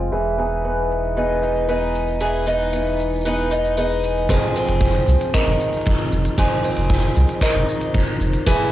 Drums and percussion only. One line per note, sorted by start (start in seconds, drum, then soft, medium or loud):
0.04 cabasa soft
0.08 cabasa soft
0.13 cabasa soft
0.26 cabasa soft
0.39 cabasa medium
0.52 cabasa soft
0.65 cabasa soft
0.78 cabasa soft
0.91 cabasa medium
1.04 cabasa soft
1.17 cabasa soft
1.30 cabasa soft
1.34 cabasa soft
1.36 cabasa soft
1.40 cabasa soft
1.43 cabasa medium
1.46 cabasa soft
1.49 cabasa soft
1.53 cabasa soft
1.56 cabasa soft
1.69 cabasa soft
1.82 cabasa soft
1.95 cabasa medium
2.08 cabasa soft
2.21 cabasa soft
2.34 cabasa soft
2.47 cabasa medium
2.61 cabasa soft
2.73 cabasa soft
2.86 cabasa soft
2.99 cabasa medium
3.13 cabasa soft
3.15 cabasa soft
3.18 cabasa soft
3.21 cabasa soft
3.23 cabasa soft
3.25 cabasa soft
3.38 cabasa soft
3.52 cabasa medium
3.65 cabasa soft
3.77 cabasa soft
3.91 cabasa soft
3.99 cabasa soft
4.03 cabasa medium
4.16 cabasa soft
4.29 kick medium
4.29 open hi-hat medium
4.29 cabasa soft
4.43 cabasa soft
4.56 cabasa medium
4.69 open hi-hat soft
4.69 cabasa soft
4.81 kick medium
4.81 open hi-hat medium
4.81 cabasa soft
4.95 open hi-hat soft
4.95 cabasa soft
5.08 cabasa medium
5.21 open hi-hat soft
5.21 cabasa soft
5.34 finger snap medium
5.34 kick medium
5.34 open hi-hat medium
5.34 cabasa soft
5.47 cabasa soft
5.60 cabasa medium
5.73 open hi-hat soft
5.73 cabasa soft
5.77 open hi-hat soft
5.81 open hi-hat soft
5.86 kick loud
5.86 open hi-hat medium
5.86 cabasa soft
5.90 open hi-hat soft
5.94 open hi-hat soft
5.99 open hi-hat soft
5.99 cabasa soft
6.12 cabasa medium
6.25 open hi-hat soft
6.25 cabasa soft
6.38 kick loud
6.38 open hi-hat medium
6.38 cabasa soft
6.51 cabasa soft
6.64 cabasa medium
6.77 open hi-hat soft
6.77 cabasa soft
6.90 kick medium
6.90 open hi-hat medium
6.90 cabasa soft
7.03 open hi-hat soft
7.03 cabasa soft
7.16 cabasa medium
7.29 open hi-hat soft
7.29 cabasa soft
7.41 finger snap medium
7.41 kick loud
7.41 open hi-hat medium
7.41 cabasa soft
7.56 cabasa soft
7.69 cabasa medium
7.82 open hi-hat soft
7.82 cabasa soft
7.94 kick loud
7.94 open hi-hat medium
7.94 cabasa soft
8.07 open hi-hat soft
8.07 cabasa soft
8.21 cabasa medium
8.34 open hi-hat soft
8.34 cabasa soft
8.47 kick loud
8.47 open hi-hat medium
8.47 cabasa soft
8.60 cabasa soft